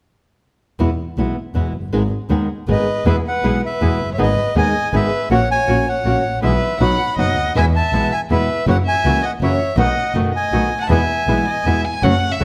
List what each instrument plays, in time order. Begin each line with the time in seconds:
0.79 double bass E2, nylon-string guitar B2 E3 G#3 B3 E4
1.17 double bass B1, nylon-string guitar B2 E3 G#3 B3 E4
1.55 double bass E2, nylon-string guitar B2 E3 G#3 B3 E4
1.74 double bass F#1
1.92 double bass G#1, nylon-string guitar D#3 G#3 B3 D#4 G#4
2.29 double bass D#2, nylon-string guitar D#3 G#3 B3 D#4 G#4
2.68 double bass G#1, nylon-string guitar D#3 G#3 B3 D#4 G#4, violin B4, bandoneon D#5
3.05 double bass E2, nylon-string guitar B2 E3 G#3 B3 E4, bandoneon B3 E4 G#4 E5, violin B4
3.27 violin B4, bandoneon F#5
3.43 double bass B1, nylon-string guitar B2 E3 G#3 B3 E4, bandoneon B3 E4 G#4
3.63 violin B4, bandoneon E5
3.81 double bass E2, nylon-string guitar B2 E3 G#3 B3 E4, bandoneon B3 E4 G#4
4.00 double bass F#1
4.14 violin C#5, bandoneon E5
4.18 double bass G#1, nylon-string guitar D#3 G#3 B3 D#4 G#4, bandoneon B3 D#4 G#4, violin B4
4.22 bandoneon D#5
4.55 double bass D#2, nylon-string guitar D#3 G#3 B3 D#4 G#4, bandoneon B3 D#4 G#4 G#5, violin D#5
4.93 double bass G#1, nylon-string guitar D#3 G#3 B3 D#4 G#4, bandoneon B3 D#4 G#4 E5, violin B4
5.30 double bass A#1, bandoneon A#3 C#4 F#4 F#5, nylon-string guitar A#3 C#4 F#4, violin C#5
5.51 violin C#5, bandoneon G#5
5.67 double bass A#1, bandoneon A#3 C#4 F#4, nylon-string guitar A#3 C#4 F#4
5.88 violin C#5, bandoneon F#5
6.04 double bass A#1, bandoneon A#3 C#4 F#4, nylon-string guitar A#3 C#4 F#4
6.23 double bass A1
6.42 double bass B1, nylon-string guitar B2 E3 G#3 B3 E4, bandoneon G#3 B3 E4 E5, violin B4
6.79 double bass B1, nylon-string guitar B2 F#3 B3 D#4 F#4, bandoneon F#3 B3 D#4 B5, violin F#5
7.17 double bass F#1, nylon-string guitar B2 F#3 B3 D#4 F#4, bandoneon F#3 B3 D#4 F#5, violin D#5
7.36 double bass D2
7.55 double bass E2, nylon-string guitar B2 E3 G#3 B3 E4, bandoneon G#3 B3 E4 G#5, violin E5
7.76 violin E5, bandoneon A5
7.92 double bass B1, nylon-string guitar B2 E3 G#3 B3 E4, bandoneon G#3 B3 E4
8.12 violin E5, bandoneon G#5
8.30 double bass E2, nylon-string guitar B2 E3 G#3 B3 E4, bandoneon G#3 B3 E4 E5, violin B4
8.67 double bass F#1, nylon-string guitar C#3 E3 A#3 C#4 F#4, bandoneon F#3 A#3 E4 F#5, violin C#5
8.85 violin E5, bandoneon G#5
9.04 double bass C#2, nylon-string guitar C#3 E3 A#3 C#4 F#4, bandoneon F#3 A#3 E4
9.23 violin D#5, bandoneon F#5
9.41 double bass F#1, nylon-string guitar C#3 E3 A#3 C#4 F#4, bandoneon F#3 A#3 E4 E5, violin C#5
9.77 double bass B1, nylon-string guitar B2 D#3 A3 B3 F#4, bandoneon A3 B3 D#4 F#5, violin D#5
10.14 double bass F#1, nylon-string guitar B2 D#3 A3 B3 F#4, bandoneon A3 B3 D#4
10.34 violin D#5, bandoneon G#5
10.52 double bass B1, nylon-string guitar B2 D#3 A3 B3 F#4, bandoneon A3 B3 D#4
10.80 violin F#5, bandoneon A5
10.89 double bass E2, nylon-string guitar B2 E3 G#3 B3 E4, bandoneon G#3 B3 E4 G#5, violin E5
11.27 double bass B1, nylon-string guitar B2 E3 G#3 B3 E4, bandoneon G#3 B3 E4
11.48 violin D#5
11.65 double bass E2, nylon-string guitar B2 E3 G#3 B3 E4, bandoneon G#3 B3 E4, violin E5
11.85 violin G#5
12.03 double bass F#1, nylon-string guitar C#3 F#3 A3 C#4 F#4, bandoneon A3 C#4 F#4, violin F#5
12.32 violin E5
12.40 double bass C#2, nylon-string guitar C#3 F#3 A3 C#4, bandoneon A3 C#4 F#4